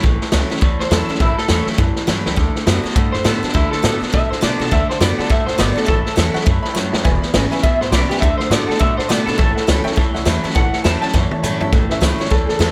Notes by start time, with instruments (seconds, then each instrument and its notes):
0.03 upright bass A1, clean electric guitar A2 E3, steel-string acoustic guitar A2, kick, snare
0.21 muted upright bass stroke, snare
0.31 upright bass C#2, clean electric guitar A2 F#3, steel-string acoustic guitar E3 A3 C#4 E4, snare, hi-hat pedal
0.50 steel-string acoustic guitar C#4 E4, snare
0.56 snare
0.61 upright bass D2, steel-string acoustic guitar E2, clean electric guitar A2 E3, kick, snare
0.79 upright bass C#2, clean electric guitar C5, snare
0.90 upright bass E2, clean electric guitar A2 F#3 A4, steel-string acoustic guitar E3 A3 C#4 E4, snare, hi-hat pedal
1.08 steel-string acoustic guitar C#4 E4, muted upright bass stroke, snare
1.15 snare
1.20 upright bass A1, steel-string acoustic guitar A2, clean electric guitar A2 E3 E4, kick, snare
1.37 clean electric guitar A4, muted upright bass stroke, snare
1.48 upright bass E2, clean electric guitar A2 F#3, steel-string acoustic guitar E3 A3 C#4 E4, snare, hi-hat pedal
1.66 muted upright bass stroke, snare
1.73 snare
1.78 steel-string acoustic guitar E2, upright bass F#2, clean electric guitar A2 E3, kick, snare
1.96 muted upright bass stroke, snare
2.07 upright bass G2, clean electric guitar A2 F#3, steel-string acoustic guitar E3 A3 C#4 E4, snare, hi-hat pedal
2.26 upright bass C#2, snare
2.36 upright bass D2, steel-string acoustic guitar D3, clean electric guitar D3 A3, kick, snare
2.55 muted upright bass stroke, snare
2.66 upright bass F#2, clean electric guitar D3 B3, steel-string acoustic guitar D3 A3 D4 F#4, snare, hi-hat pedal
2.84 steel-string acoustic guitar D4 F#4, muted upright bass stroke, snare
2.91 clean electric guitar D3, snare
2.95 upright bass G2, steel-string acoustic guitar A2, clean electric guitar A3, kick, snare
3.12 upright bass F#2, clean electric guitar C5, snare
3.24 upright bass A2, clean electric guitar D3 B3 A4, steel-string acoustic guitar D3 A3 D4 F#4, snare, hi-hat pedal
3.43 steel-string acoustic guitar D4 F#4, muted upright bass stroke, snare
3.49 snare
3.54 upright bass D2, steel-string acoustic guitar D3, clean electric guitar D3 A3 E4, kick, snare
3.71 clean electric guitar A4, muted upright bass stroke, snare
3.82 upright bass A2, steel-string acoustic guitar D3 A3 D4 F#4, clean electric guitar D3 B3, snare, hi-hat pedal
4.00 steel-string acoustic guitar D4 F#4, muted upright bass stroke, snare
4.08 snare
4.12 steel-string acoustic guitar A2, upright bass B2, clean electric guitar D3 A3 E5, kick, snare
4.30 clean electric guitar C5, muted upright bass stroke, snare
4.41 upright bass B2, steel-string acoustic guitar D3 A3 D4 F#4, clean electric guitar D3 B3 D5, snare, hi-hat pedal
4.60 upright bass B2, steel-string acoustic guitar D4 F#4, clean electric guitar A4, snare
4.66 snare
4.71 upright bass D2, steel-string acoustic guitar D3, clean electric guitar D3 A3 E5, upright piano D5 F#5 A5, kick, snare
4.89 clean electric guitar C5, upright piano D5 F#5 A5, muted upright bass stroke, snare
5.00 upright bass F#2, steel-string acoustic guitar D3 A3 D4 F#4, clean electric guitar D3 B3 D5, upright piano D5 F#5 B5, snare, hi-hat pedal
5.18 clean electric guitar A4, upright piano D5 F#5 A5, muted upright bass stroke, snare
5.24 snare
5.30 upright bass G2, steel-string acoustic guitar A2, clean electric guitar D3 A3 E5, upright piano D5 F#5 A5, kick, snare
5.46 upright bass F#2, clean electric guitar C5, upright piano D5 F#5 A5, snare
5.57 upright bass G1, steel-string acoustic guitar D3 A3 D4 F#4, clean electric guitar D3 B3 D5, upright piano D5 F#5 B5, snare, hi-hat pedal
5.75 steel-string acoustic guitar D4 F#4, clean electric guitar A4, upright piano D5 F#5 A5, muted upright bass stroke, snare
5.84 steel-string acoustic guitar A2, clean electric guitar A4, upright piano C#5 E5 A5, snare
5.88 upright bass A1, clean electric guitar A2 E3, kick, snare
6.05 upright piano C#5 E5 A5, muted upright bass stroke, snare
6.16 upright bass E2, clean electric guitar A2 F#3, steel-string acoustic guitar E3 A3 C#4 E4, upright piano C#5 E5 A5, snare, hi-hat pedal
6.34 upright piano C#5 E5 F#5, muted upright bass stroke, snare
6.41 upright piano C#5 E5, snare
6.45 upright bass F#2, steel-string acoustic guitar G2, clean electric guitar A2 E3, upright piano A5, kick, snare
6.62 upright piano C#5 E5 B5, muted upright bass stroke, snare
6.68 upright piano G5
6.73 steel-string acoustic guitar F#2, upright bass G2, clean electric guitar A2 F#3, upright piano C#5 E5 A5 B5, snare, hi-hat pedal
6.92 upright bass D#2, upright piano C#5 E5 A5, snare
7.04 upright bass E1, steel-string acoustic guitar E2, clean electric guitar E2 B2, upright piano B4 E5 G#5, kick, snare
7.22 upright piano B4 E5 B5, muted upright bass stroke, snare
7.34 upright bass G#1, clean electric guitar E2 C#3, steel-string acoustic guitar E3 G#3 B3 E4, upright piano B4 E5 G#5, snare, hi-hat pedal
7.51 steel-string acoustic guitar B3 E4, upright piano B4 E5 G#5, muted upright bass stroke, snare
7.58 snare
7.62 upright bass A1, clean electric guitar E2 B2 E5, steel-string acoustic guitar B2, upright piano B4 E5 G#5, kick, snare
7.80 upright bass G#1, upright piano B4 E5 F#5, clean electric guitar C5, snare
7.91 upright bass B1, clean electric guitar E2 C#3 D5, steel-string acoustic guitar E3 G#3 B3 E4, upright piano B4 E5 B5, snare, hi-hat pedal
8.09 steel-string acoustic guitar B3 E4, clean electric guitar G4, upright piano B4 E5 G#5, snare
8.17 clean electric guitar E5, snare
8.21 upright bass D2, clean electric guitar D3 A3, steel-string acoustic guitar D3, upright piano D5 F#5 A5, kick, snare
8.38 clean electric guitar C5, upright piano D5 F#5 A5, muted upright bass stroke, snare
8.50 upright bass A2, steel-string acoustic guitar D3 A3 D4 F#4, clean electric guitar D3 B3 D5, upright piano D5 F#5 A5, snare, hi-hat pedal
8.67 clean electric guitar A4, upright piano D5 F#5 A5, muted upright bass stroke, snare
8.75 upright piano D5, snare
8.79 steel-string acoustic guitar A2, upright bass B2, clean electric guitar D3 A3 E5, upright piano F#5 A5, kick, snare
8.97 clean electric guitar C5, upright piano D5 F#5 A5, muted upright bass stroke, snare
9.08 upright bass B2, steel-string acoustic guitar D3 A3 D4 F#4, clean electric guitar D3 B3 D5, upright piano D5 F#5 A5, snare, hi-hat pedal
9.26 upright bass B2, steel-string acoustic guitar D4 F#4, clean electric guitar A4, upright piano D5 F#5 B5, snare
9.33 snare
9.38 upright bass A1, steel-string acoustic guitar A2, clean electric guitar A2 E3 A4, upright piano C#5 E5 A5, kick, snare
9.55 upright piano C#5 E5 F#5, muted upright bass stroke, snare
9.67 upright bass C#2, clean electric guitar A2 F#3, steel-string acoustic guitar E3 A3 C#4 E4, upright piano C#5 E5 A5, snare, hi-hat pedal
9.84 steel-string acoustic guitar C#4 E4, upright piano C#5 E5 G5, muted upright bass stroke, snare
9.92 steel-string acoustic guitar E2, snare
9.97 upright bass D2, clean electric guitar A2 E3, upright piano C#5 E5 A5, kick, snare
10.14 upright bass C#2, upright piano C#5 E5 F#5, snare
10.25 upright bass E2, clean electric guitar A2 F#3, steel-string acoustic guitar E3 A3 C#4 E4, upright piano C#5 E5 A5, snare, hi-hat pedal
10.43 steel-string acoustic guitar C#4 E4, upright piano C#5 E5 A5, muted upright bass stroke, snare
10.50 upright piano C#5, snare
10.54 upright bass A1, steel-string acoustic guitar A2, clean electric guitar A2 E3 F#5, upright piano E5 A5, kick, snare
10.72 upright piano C#5 E5 A5, muted upright bass stroke, snare
10.84 upright bass E2, clean electric guitar A2 F#3 A5, steel-string acoustic guitar E3 A3 C#4 E4, upright piano C#5 E5 A5, snare, hi-hat pedal
11.01 steel-string acoustic guitar C#4 E4, upright piano C#5 E5 G5, clean electric guitar A5, snare
11.08 snare
11.13 steel-string acoustic guitar E2, upright bass F#2, clean electric guitar A2 E3, upright piano C#5 E5 A5, kick, snare
11.31 upright piano C#5 E5 A5, muted upright bass stroke, high tom
11.42 upright bass G2, clean electric guitar A2 F#3, steel-string acoustic guitar E3 A3 C#4 E4, upright piano C#5 E5 A5, hi-hat pedal, mid tom
11.60 upright bass F#2, steel-string acoustic guitar C#4 E4, upright piano C#5 E5 A5, floor tom
11.72 upright bass A1, clean electric guitar A2 E3, steel-string acoustic guitar A2, kick, snare
11.89 upright piano E3 A3 C#4 E5, muted upright bass stroke, snare
12.01 upright bass C#2, clean electric guitar A2 F#3, steel-string acoustic guitar E3 A3 C#4 E4, upright piano E5, snare, hi-hat pedal
12.18 steel-string acoustic guitar C#4 E4, upright piano C#5, muted upright bass stroke, snare
12.25 snare
12.30 upright bass D2, steel-string acoustic guitar E2, clean electric guitar A2 E3, upright piano A4, kick, snare
12.45 upright bass C#2, upright piano G#4, snare
12.49 upright piano A4
12.56 upright bass E2, steel-string acoustic guitar E3 A3, upright piano G#4
12.60 clean electric guitar A2 F#3, steel-string acoustic guitar C#4 E4, upright piano A4, snare, hi-hat pedal